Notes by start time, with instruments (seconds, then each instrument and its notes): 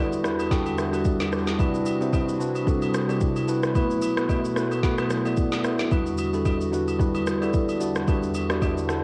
Already playing: analog synth pad E2 D3 G3 F#4, tine electric piano G3 D4 E4 F#4 A4 B4 D5
0.12 shaker
0.23 tine electric piano G3 D4 E4 F#4 B4 B5, cross-stick, shaker
0.39 high agogo, shaker
0.50 tine electric piano G3 D4 E4 F#4 A4 G5, kick, snare, shaker
0.66 high agogo, shaker
0.78 tine electric piano E5, cross-stick, shaker
0.92 tine electric piano G3 D4 E4 F#4 B4, high agogo, shaker
1.05 tine electric piano D5, kick, shaker
1.20 snare, high agogo, shaker
1.31 tine electric piano G3 D4 E4 F#4 D5, cross-stick, shaker
1.47 snare, shaker
1.58 tine electric piano C3 G3 D4 E4 F#4 B4, analog synth pad C3 G3 C4 D4 E4, kick, high agogo, shaker
1.74 shaker
1.86 high agogo, shaker
2.00 tine electric piano C3 G3 D4 E4 F#4 C5, shaker
2.13 kick, high agogo, low woodblock, shaker
2.29 shaker
2.39 tine electric piano C3 G3 D4 E4 F#4 B4, shaker
2.55 high agogo, shaker
2.66 tine electric piano C3 G3 D4 E4 F#4 A4, kick, shaker
2.82 high agogo, shaker
2.94 cross-stick, shaker
3.08 tine electric piano C3 G3 D4 E4 F#4 D5, high agogo, shaker
3.21 kick, shaker
3.36 high agogo, shaker
3.47 tine electric piano C3 G3 D4 E4 F#4 B4, shaker
3.63 cross-stick, shaker
3.74 analog synth pad B2 F#3 A3, tine electric piano A3 B3 E4 F#4 B4, kick, high agogo, shaker
3.90 shaker
4.02 high agogo, shaker
4.16 tine electric piano A3 B3 E4 F#4 B4, cross-stick, shaker
4.29 kick, high agogo, low woodblock, shaker
4.45 shaker
4.56 tine electric piano A3 B3 E4 F#4 B4, cross-stick, shaker
4.72 high agogo, shaker
4.83 tine electric piano A3 B3 E4 F#4 B4, kick, snare, shaker
4.98 cross-stick, high agogo, shaker
5.10 cross-stick, shaker
5.25 tine electric piano A3 B3 E4 F#4 D5, high agogo, shaker
5.37 kick, shaker
5.52 snare, high agogo, shaker
5.64 tine electric piano A3 B3 E4 F#4 A4, cross-stick, shaker
5.79 snare, shaker
5.91 analog synth pad E2 D3 G3 F#4, tine electric piano G3 D4 E4 F#4 B4, kick, high agogo, shaker
6.07 shaker
6.18 high agogo, shaker
6.33 tine electric piano G3 D4 E4 F#4 A4, shaker
6.46 kick, high agogo, low woodblock, shaker
6.61 shaker
6.72 tine electric piano G3 D4 E4 F#4 B4, shaker
6.88 high agogo, shaker
6.99 tine electric piano G3 D4 E4 F#4 B4, kick, shaker
7.15 high agogo, shaker
7.27 cross-stick, shaker
7.41 tine electric piano G3 D4 E4 F#4 A4, high agogo, shaker
7.54 kick, shaker
7.69 high agogo, shaker
7.80 tine electric piano G3 D4 E4 F#4 D5, shaker
7.96 cross-stick, shaker
8.07 tine electric piano G3 D4 E4 F#4 B4, kick, high agogo, shaker
8.23 shaker
8.34 high agogo, shaker
8.49 tine electric piano G3 D4 E4 F#4 D5, cross-stick, shaker
8.62 kick, high agogo, low woodblock, shaker
8.78 shaker
8.88 tine electric piano G3 D4 E4 F#4 A4, cross-stick, shaker